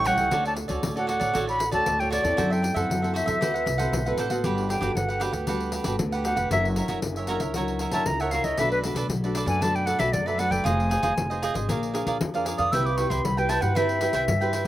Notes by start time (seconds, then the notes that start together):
Already playing: A1 E3
0.04 G3 C#4 E4 G4 A4 C#5 F#5 G5, pandeiro
0.17 C#2 A4 C#5 G5, pandeiro
0.31 D2 D3 C#4 F#4 A4 C#5 D5, pandeiro
0.45 A4 C#5 D5 A5, pandeiro
0.56 muted cavaquinho stroke, pandeiro
0.68 D2 C#4 F#4 A4 C#5 D5, pandeiro
0.83 D2 A2, pandeiro
0.96 C#4 F#4 A4 C#5 D5 F#5, pandeiro
1.07 F#4 A4 C#5 D5 F#5, pandeiro
1.20 A1 A4 C#5 D5, pandeiro
1.34 A1 D3 C#4 F#4 A4 C#5 D5, pandeiro
1.47 A4 C#5 D5 B5, pandeiro
1.59 muted cavaquinho stroke, pandeiro
1.71 D2 C#4 F#4 A4 C#5 D5 A5, pandeiro
1.86 D2 A2, pandeiro
1.99 C#4 F#4 A4 C#5 D5 G5, pandeiro
2.10 F#4 A4 C#5 D5, pandeiro
2.23 E2 C4 E4 A4 C#5 D5, pandeiro
2.37 F#2 F#3 F#4 A4 C5 E5, pandeiro
2.50 A4 C5 E5 G5, pandeiro
2.62 muted cavaquinho stroke, pandeiro
2.74 F#2 C4 E4 A4 C5 E5 F#5, pandeiro
2.90 F#2 F#3, pandeiro
3.02 C4 E4 A4 C5 E5, pandeiro
3.14 F#4 A4 C5 E5, pandeiro
3.26 E2 A4 C5 E5, pandeiro
3.41 D2 D3 C4 D4 F#4 A4 B4 C5 F#5, pandeiro
3.54 A4 C5 F#5, pandeiro
3.66 C2, muted cavaquinho stroke, pandeiro
3.78 C4 F#4 A4 B4 C5 F#5, pandeiro
3.92 B1 A2, pandeiro
4.06 C4 F#4 A4 B4 C5 F#5, pandeiro
4.17 A1 D4 A4 C5 F#5, pandeiro
4.30 B3 F#4 A4 C5 F#5, pandeiro
4.44 G1 G3 D4 G4 B4 F#5, pandeiro
4.58 pandeiro
4.69 D4 G4 B4 F#5 G5, pandeiro
4.81 G1 B3 D4 F#4 G4 A4 B4 F#5, pandeiro
4.95 G1 D3 F#5, pandeiro
5.08 G4 B4 F#5, pandeiro
5.20 B3 D4 F#4 G4 A4 B4 F#5, pandeiro
5.32 D2 G4 B4 F#5, pandeiro
5.47 G3 B3 D4 F#4 G4 A4 B4 F#5, pandeiro
5.60 pandeiro
5.72 D4 G4 B4 F#5, pandeiro
5.84 G1 B3 D4 F#4 G4 A4 B4 F#5, pandeiro
5.99 D2 D3, pandeiro
6.12 G4 B4 F#5, pandeiro
6.24 B3 D4 F#4 G4 A4 B4 F#5, pandeiro
6.36 F1 G4 B4 F#5, pandeiro
6.51 F#1 F#3 D4 E4 F#4 A#4 C#5 E5, pandeiro
6.65 pandeiro
6.76 F#4 A#4 C#5 E5, pandeiro
6.88 F#1 D4 E4 F#4 A#4 C#5 E5, pandeiro
7.02 F#1 C#3, pandeiro
7.16 A#4 C#5 E5, pandeiro
7.27 D4 E4 F#4 A#4 C#5 E5, pandeiro
7.40 C#2 A#4 C#5 E5, pandeiro
7.54 F#3 D4 E4 F#4 A#4 C#5 E5, pandeiro
7.68 pandeiro
7.79 F#4 A#4 C#5 E5, pandeiro
7.91 F#1 D4 E4 F#4 A#4 C#5 E5 A5, pandeiro
8.06 C#2 C#3 A#5, pandeiro
8.20 A#4 C#5 E5 F#5, pandeiro
8.31 D4 E4 F#4 A#4 C#5 E5 F5, pandeiro
8.44 C#2 A#4 C#5 D#5 E5, pandeiro
8.57 B1 B2 A3 D4 F#4 A4 B4 D5 E5, pandeiro
8.71 B4, pandeiro
8.84 A3 D4 F#4 A4 B4 D5, pandeiro
8.95 B1 D4 A4 B4 D5, pandeiro
9.09 B1 F#3, pandeiro
9.24 A3 D4 F#4 A4 B4 D5, pandeiro
9.35 D4 A4 B4 D5, pandeiro
9.46 F#2 A3 D4 F#4 A4 B4 D5 G#5, pandeiro
9.61 B2 A3 D4 F#4 A4 B4 D5 A5, pandeiro
9.75 G5, pandeiro
9.86 D4 A4 B4 D5 F#5, pandeiro
9.99 B1 A3 D4 F#4 A4 B4 D5 E5, pandeiro
10.13 F#2 F#3 D5, pandeiro
10.26 A4 B4 D5 E5, pandeiro
10.38 A3 D4 F#4 A4 B4 D5 F#5, pandeiro
10.50 F#1 A4 B4 D5 G5, pandeiro
10.64 F1 F3 D#4 F4 G#4 C5 D#5 G#5, pandeiro
10.80 pandeiro
10.90 F4 G#4 C5 D#5, pandeiro
11.03 F1 D#4 F4 G#4 C5 D#5, pandeiro
11.17 F1 C3, pandeiro
11.30 D#4 G#4 C5 D#5, pandeiro
11.42 F4 G#4 C5 D#5, pandeiro
11.54 G#1 D4 G#4 C5 D#5, pandeiro
11.69 A#1 A#3 G#4 A#4 D5 F5, pandeiro
11.83 pandeiro
11.94 D4 G#4 A#4 C5 D5 F5, pandeiro
12.07 A#1 G#4 A#4 D5 F5, pandeiro
12.21 F2 F3, pandeiro
12.34 D4 G#4 A#4 C5 D5 F5, pandeiro
12.45 G#4 A#4 D5 F5, pandeiro
12.58 F2 A#4 D5 F5 D#6, pandeiro
12.72 C2 C4 E4 G4 B4 C5 G5 E6, pandeiro
12.86 D6, pandeiro
12.97 E4 G4 B4 C5 G5 C#6, pandeiro
13.10 C2 E4 B4 C5 G5 C6, pandeiro
13.25 C2 G3 B5, pandeiro
13.37 E4 G4 B4 C5 G5, pandeiro
13.49 E4 B4 C5 G5 A5, pandeiro
13.61 G2 E4 G4 B4 C5 F#5 G5, pandeiro
13.75 C4 E4 G4 B4 C5 E5 G5, pandeiro
13.89 pandeiro
14.00 E4 G4 B4 C5 G5, pandeiro
14.13 C2 E4 B4 C5 G5, pandeiro
14.28 G2 G3, pandeiro
14.41 E4 G4 B4 C5 G5, pandeiro
14.53 E4 B4 C5 G5, pandeiro